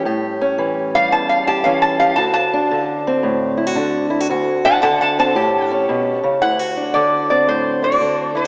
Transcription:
Already playing: steel-string acoustic guitar G3
0.05 steel-string acoustic guitar A2 G4
0.41 steel-string acoustic guitar C#4
0.58 steel-string acoustic guitar E3
0.95 steel-string acoustic guitar G3, resonator guitar played with a steel bar F5
1.12 steel-string acoustic guitar E2, resonator guitar played with a steel bar A5
1.29 resonator guitar played with a steel bar F5
1.47 steel-string acoustic guitar G4, resonator guitar played with a steel bar A5
1.64 steel-string acoustic guitar E3 C#4, resonator guitar played with a steel bar F5
1.82 resonator guitar played with a steel bar A5
2.00 steel-string acoustic guitar G4, resonator guitar played with a steel bar F5
2.16 steel-string acoustic guitar D2 F#4, resonator guitar played with a steel bar A5
2.34 resonator guitar played with a steel bar A5
2.53 steel-string acoustic guitar D4
2.71 steel-string acoustic guitar D3
3.07 steel-string acoustic guitar C4
3.23 steel-string acoustic guitar A2
3.57 steel-string acoustic guitar E4
3.67 steel-string acoustic guitar F#4
3.75 steel-string acoustic guitar D3 D4
4.10 steel-string acoustic guitar E4
4.20 steel-string acoustic guitar F#4
4.29 steel-string acoustic guitar D2 F#4
4.65 steel-string acoustic guitar D4, resonator guitar played with a steel bar F#5 A5
4.82 steel-string acoustic guitar D3, resonator guitar played with a steel bar F#5 A5
5.01 resonator guitar played with a steel bar F#5 A5
5.19 steel-string acoustic guitar C4, resonator guitar played with a steel bar A5
5.35 steel-string acoustic guitar A2 G4
5.71 steel-string acoustic guitar C#4
5.89 steel-string acoustic guitar B2
6.23 steel-string acoustic guitar C#3
6.42 steel-string acoustic guitar D2 E4, resonator guitar played with a steel bar F#5
6.59 steel-string acoustic guitar F#4
6.77 steel-string acoustic guitar D4
6.94 steel-string acoustic guitar D3, resonator guitar played with a steel bar D5
7.30 steel-string acoustic guitar C4, resonator guitar played with a steel bar D5
7.47 steel-string acoustic guitar A2, resonator guitar played with a steel bar C5
7.82 steel-string acoustic guitar E4, resonator guitar played with a steel bar D5
7.92 steel-string acoustic guitar F#4
8.01 steel-string acoustic guitar D3 D4
8.35 steel-string acoustic guitar E4, resonator guitar played with a steel bar C5

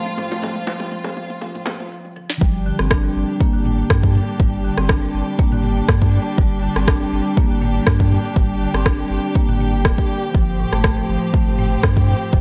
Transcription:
Already playing: string section G2 F3 C4 F4
0.06 mid tom
0.17 marimba A2, mid tom, low bongo
0.30 marimba A3, mid tom, high bongo
0.42 marimba F3, mid tom, low bongo
0.55 mid tom
0.67 marimba F3, mid tom, high bongo
0.80 mid tom, low bongo
0.92 marimba F3, mid tom
1.04 mid tom, low bongo
1.17 marimba F3, mid tom
1.30 mid tom
1.41 marimba F3, mid tom, low bongo
1.55 mid tom
1.66 marimba F3, mid tom, high bongo, low bongo
1.80 mid tom
1.92 marimba F3
2.05 high tom
2.16 marimba F3, mid tom
2.30 snare
2.41 sub bass G1, string section G3 D4 G4, marimba G3, kick
2.66 marimba D3
2.79 sub bass G1, marimba C4, cross-stick
2.91 marimba D4, kick, cross-stick
3.04 marimba G3
3.16 sub bass G1
3.40 marimba A#3, kick
3.54 sub bass G1, marimba D3
3.65 marimba A#3, mid tom
3.90 sub bass G2, kick, cross-stick
4.03 kick
4.15 mid tom
4.39 sub bass G1, marimba G3, kick, mid tom
4.65 marimba D3
4.78 sub bass G1, marimba C4, cross-stick
4.89 marimba D4, kick, cross-stick
5.03 marimba G3
5.14 sub bass G1
5.39 marimba A#3, kick
5.52 sub bass G1, marimba D3, mid tom
5.64 marimba A#3, mid tom
5.88 sub bass G2, kick, cross-stick
6.02 kick
6.38 sub bass G1, marimba G3, kick
6.63 marimba D3
6.76 sub bass G1, marimba C4, cross-stick
6.88 marimba D4, kick, cross-stick
7.01 marimba G3
7.13 sub bass G1
7.37 marimba A#3, kick
7.50 sub bass G1, marimba D3
7.62 marimba A#3, mid tom
7.87 sub bass G2, kick, cross-stick
8.00 kick
8.12 mid tom
8.36 sub bass G1, marimba G3, kick, mid tom
8.61 marimba D3
8.74 sub bass G1, marimba C4, cross-stick
8.86 marimba D4, kick, cross-stick
8.99 marimba G3
9.10 sub bass G1
9.35 marimba A#3, kick
9.49 sub bass G1, marimba D3, mid tom
9.60 marimba A#3, mid tom
9.85 sub bass D1, kick, cross-stick
9.98 kick
10.34 sub bass G1, string section F3 C4, marimba F3, kick
10.60 marimba A2
10.72 sub bass G1, marimba A3, cross-stick
10.84 kick, cross-stick
10.98 marimba F3
11.09 sub bass G1
11.34 marimba A3, kick
11.47 sub bass G1, marimba A2
11.58 marimba A3, mid tom
11.83 sub bass G2, kick, cross-stick
11.97 kick
12.08 mid tom
12.33 sub bass G1, marimba F3, kick, mid tom

